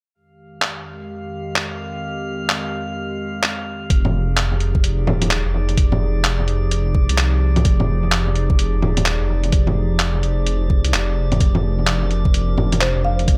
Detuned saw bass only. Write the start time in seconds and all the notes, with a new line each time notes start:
3.90 F1
5.07 D#1
5.45 F1
7.10 C2
7.65 F1
8.83 D#1
9.20 F1
10.85 C2
10.94 F1
11.40 F1
12.58 F1
12.96 F1